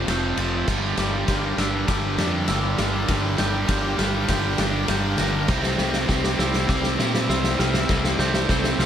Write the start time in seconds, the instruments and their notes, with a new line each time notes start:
Already playing: clean electric guitar F3 C4, string section F4 A4 D5 A5
0.07 fingered electric bass F1, overdriven electric guitar F2 C3 F3, clean electric guitar A3, glockenspiel G6, snare, ride
0.37 fingered electric bass F1, overdriven electric guitar F2 C3 F3, clean electric guitar C4, glockenspiel A6, ride
0.67 fingered electric bass G1, overdriven electric guitar G2 D3 G3, clean electric guitar G2, string section D4 G4 A#4 G5, kick, snare, crash
0.97 fingered electric bass G1, overdriven electric guitar G2 D3 G3, clean electric guitar G3, glockenspiel D6, snare, ride
1.28 fingered electric bass G1, overdriven electric guitar G2 D3 G3, clean electric guitar A#3, kick, snare, ride
1.57 fingered electric bass G1, overdriven electric guitar G2 D3 G3, clean electric guitar D4, glockenspiel E6, snare, ride
1.87 fingered electric bass G1, overdriven electric guitar G2 D3 G3, clean electric guitar G3, glockenspiel D6, kick, snare, ride
2.17 fingered electric bass F2, overdriven electric guitar G2 D3 G3, clean electric guitar D4, snare, ride
2.48 fingered electric bass G1, overdriven electric guitar G2 D3 G3, clean electric guitar A#3, glockenspiel E6, snare, ride
2.77 fingered electric bass G1, overdriven electric guitar G2 D3 G3, clean electric guitar D4, glockenspiel F6, snare, ride
3.08 fingered electric bass G1, overdriven electric guitar G2 D3 G3, clean electric guitar G2, kick, snare, ride
3.37 fingered electric bass G1, overdriven electric guitar G2 D3 G3, clean electric guitar G3, glockenspiel G6, snare, ride
3.68 fingered electric bass G1, overdriven electric guitar G2 D3 G3, clean electric guitar A#3, kick, snare, ride
3.98 fingered electric bass G1, overdriven electric guitar G2 D3 G3, clean electric guitar D4, glockenspiel F6, snare, ride
4.28 fingered electric bass G1, overdriven electric guitar G2 D3 G3, clean electric guitar G3, glockenspiel G6, kick, snare, ride
4.58 fingered electric bass G1, overdriven electric guitar G2 D3 G3, clean electric guitar D4, snare, ride
4.88 fingered electric bass G1, overdriven electric guitar G2 D3 G3, clean electric guitar A#3, glockenspiel G6, snare, ride
5.18 fingered electric bass G1, overdriven electric guitar G2 D3 G3, clean electric guitar D4, glockenspiel A#6, snare, ride
5.48 fingered electric bass C2, clean electric guitar C3, overdriven electric guitar C3 G3 C4, string section E4 C5, kick, snare, crash
5.63 snare
5.78 fingered electric bass C2, overdriven electric guitar C3 G3 C4, clean electric guitar G3, glockenspiel D6, snare
5.93 snare
6.07 fingered electric bass C2, overdriven electric guitar C3 G3 C4, clean electric guitar C4, kick, snare
6.24 snare
6.38 fingered electric bass C2, overdriven electric guitar C3 G3 C4, clean electric guitar E4, glockenspiel E6, snare
6.54 snare
6.68 fingered electric bass C2, overdriven electric guitar C3 G3 C4, clean electric guitar G3, glockenspiel D6, kick, snare
6.83 snare
6.98 fingered electric bass A#2, overdriven electric guitar C3 G3 C4, clean electric guitar E4, snare
7.14 snare
7.28 fingered electric bass C2, overdriven electric guitar C3 G3 C4, clean electric guitar C4, glockenspiel E6, snare
7.44 snare
7.58 fingered electric bass C2, overdriven electric guitar C3 G3 C4, clean electric guitar E4, glockenspiel F6, snare
7.74 snare
7.89 fingered electric bass C2, overdriven electric guitar C3 G3 C4, clean electric guitar C3, string section A4, kick, snare
8.04 snare
8.19 fingered electric bass C2, overdriven electric guitar C3 G3 C4, clean electric guitar G3, glockenspiel G6, snare
8.34 snare
8.49 fingered electric bass C2, overdriven electric guitar C3 G3 C4, clean electric guitar C4, kick, snare
8.64 snare
8.78 fingered electric bass C2, overdriven electric guitar C3 G3 C4, clean electric guitar E4, glockenspiel F6, snare